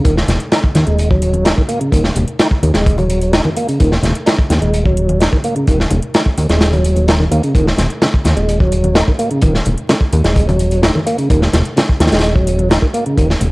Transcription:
0.04 analog synth bass D#1, tonewheel organ D#3, kick, closed hi-hat
0.17 snare
0.28 analog synth bass D#1, snare, closed hi-hat, low conga
0.40 closed hi-hat
0.52 tonewheel organ D#4, snare, closed hi-hat
0.64 kick
0.75 analog synth bass D#2, snare, closed hi-hat, high conga
0.87 analog synth bass D#1, tonewheel organ G#3, closed hi-hat
0.99 closed hi-hat
1.10 tonewheel organ F#3, kick
1.22 closed hi-hat
1.33 closed hi-hat, high conga
1.45 tonewheel organ D#4, snare, closed hi-hat
1.57 tonewheel organ D#3, kick
1.69 tonewheel organ A#3, closed hi-hat
1.81 tonewheel organ C#3, closed hi-hat
1.92 analog synth bass D#1, tonewheel organ D#3, kick, closed hi-hat
2.04 snare
2.15 analog synth bass D#1, closed hi-hat, low conga
2.28 closed hi-hat
2.39 tonewheel organ D#4, snare, closed hi-hat
2.51 kick
2.63 analog synth bass D#2, closed hi-hat, high conga
2.74 analog synth bass D#1, tonewheel organ G#3, snare, closed hi-hat
2.86 kick, closed hi-hat
2.98 tonewheel organ F#3, closed hi-hat, high conga
3.10 closed hi-hat
3.21 closed hi-hat
3.33 tonewheel organ D#4, snare, closed hi-hat
3.45 tonewheel organ D#3, high conga
3.57 tonewheel organ A#3, closed hi-hat
3.68 tonewheel organ C#3, closed hi-hat
3.80 analog synth bass D#1, tonewheel organ D#3, kick, closed hi-hat
3.92 snare
4.03 analog synth bass D#1, snare, closed hi-hat, low conga
4.15 closed hi-hat
4.26 tonewheel organ D#4, snare, closed hi-hat
4.38 kick
4.50 analog synth bass D#2, snare, closed hi-hat, high conga
4.62 analog synth bass D#1, tonewheel organ G#3, closed hi-hat
4.74 closed hi-hat
4.86 tonewheel organ F#3, kick
4.97 closed hi-hat
5.09 closed hi-hat, high conga
5.20 tonewheel organ D#4, snare, closed hi-hat
5.32 tonewheel organ D#3, kick
5.44 tonewheel organ A#3, closed hi-hat
5.56 tonewheel organ C#3, closed hi-hat
5.67 analog synth bass D#1, tonewheel organ D#3, kick, closed hi-hat
5.80 snare
5.90 analog synth bass D#1, closed hi-hat, low conga
6.02 closed hi-hat
6.14 tonewheel organ D#4, snare, closed hi-hat
6.26 kick
6.38 analog synth bass D#2, closed hi-hat, high conga
6.49 analog synth bass D#1, tonewheel organ G#3, snare, closed hi-hat
6.61 snare, closed hi-hat
6.73 tonewheel organ F#3, closed hi-hat, high conga
6.85 closed hi-hat
6.96 analog synth bass D#1, closed hi-hat
7.08 tonewheel organ D#4, snare, closed hi-hat
7.20 tonewheel organ D#3, high conga
7.31 analog synth bass D#2, tonewheel organ A#3, closed hi-hat
7.43 tonewheel organ C#3, closed hi-hat
7.55 analog synth bass D#1, tonewheel organ D#3, kick, closed hi-hat
7.67 snare
7.77 analog synth bass D#1, snare, closed hi-hat, low conga
7.90 closed hi-hat
8.02 tonewheel organ C#3, snare, closed hi-hat
8.14 kick
8.25 analog synth bass D#2, snare, closed hi-hat, high conga
8.37 analog synth bass D#1, tonewheel organ G#3, closed hi-hat
8.49 closed hi-hat
8.60 tonewheel organ F#3, kick
8.72 closed hi-hat
8.84 closed hi-hat, high conga
8.95 tonewheel organ D#4, snare, closed hi-hat
9.07 tonewheel organ D#3, kick
9.19 tonewheel organ A#3, closed hi-hat
9.31 tonewheel organ C#3, closed hi-hat
9.41 analog synth bass D#1, tonewheel organ D#3, kick, closed hi-hat
9.55 snare
9.65 analog synth bass D#1, closed hi-hat, low conga
9.78 closed hi-hat
9.89 tonewheel organ C#3, snare, closed hi-hat
10.01 kick
10.13 analog synth bass D#2, closed hi-hat, high conga
10.24 analog synth bass D#1, tonewheel organ G#3, snare, closed hi-hat
10.36 kick, closed hi-hat
10.48 tonewheel organ F#3, closed hi-hat, high conga
10.59 closed hi-hat
10.71 closed hi-hat
10.82 tonewheel organ D#4, snare, closed hi-hat
10.95 tonewheel organ D#3, high conga
11.06 tonewheel organ A#3, closed hi-hat
11.18 tonewheel organ C#3, closed hi-hat
11.30 analog synth bass D#1, tonewheel organ D#3, kick, closed hi-hat
11.42 snare
11.53 analog synth bass D#1, snare, closed hi-hat, low conga
11.65 closed hi-hat
11.77 tonewheel organ C#3, snare, closed hi-hat
11.89 kick
12.00 analog synth bass D#2, snare, closed hi-hat, high conga
12.07 snare, closed hi-hat
12.12 analog synth bass D#1, tonewheel organ G#3, snare, closed hi-hat
12.19 snare, closed hi-hat
12.23 closed hi-hat
12.35 tonewheel organ F#3, kick
12.47 closed hi-hat
12.59 closed hi-hat, high conga
12.70 tonewheel organ D#4, snare, closed hi-hat
12.82 tonewheel organ D#3, kick
12.94 tonewheel organ A#3, closed hi-hat
13.06 tonewheel organ C#3, closed hi-hat
13.17 analog synth bass D#1, tonewheel organ D#3, kick, closed hi-hat
13.30 snare
13.41 analog synth bass D#1, closed hi-hat, low conga

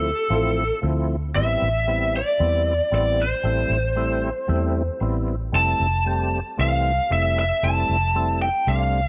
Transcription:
Already playing: fingered electric bass D2, tonewheel organ F3 A3 C4 E4, lead electric guitar A4
0.30 fingered electric bass A1, tonewheel organ F3 A3 C4 E4
0.82 fingered electric bass D2, tonewheel organ F3 A3 C4 E4
1.35 fingered electric bass A1, tonewheel organ G3 B3 C4 E4, lead electric guitar E5
1.62 fingered electric bass A1
1.87 tonewheel organ G3 B3 C4 E4
2.16 lead electric guitar D5
2.39 fingered electric bass E2, tonewheel organ G3 B3 C4 E4
2.92 fingered electric bass A1, tonewheel organ G3 B3 C4 E4, lead electric guitar D5
3.21 lead electric guitar C5
3.43 fingered electric bass A1, tonewheel organ G3 A3 C4 E4
3.70 fingered electric bass A1
3.96 tonewheel organ G3 A3 C4 E4
4.48 fingered electric bass E2, tonewheel organ G3 A3 C4 E4
5.01 fingered electric bass A1, tonewheel organ G3 B3 C4 E4
5.52 fingered electric bass F1, tonewheel organ G3 A3 C4 E4, lead electric guitar A5
5.80 fingered electric bass F1
6.05 tonewheel organ G3 A3 C4 G4
6.58 fingered electric bass C2, tonewheel organ E3 G3 A3 C4, lead electric guitar F5
7.10 fingered electric bass F1, tonewheel organ G3 A3 C4 E4, lead electric guitar E5
7.39 lead electric guitar E5
7.63 fingered electric bass F1, tonewheel organ G3 A3 C4 E4, lead electric guitar A5
7.89 fingered electric bass F1
8.15 tonewheel organ G3 A3 C4 E4
8.42 lead electric guitar G5
8.67 fingered electric bass C2, tonewheel organ G3 A3 C4 D4, lead electric guitar F5

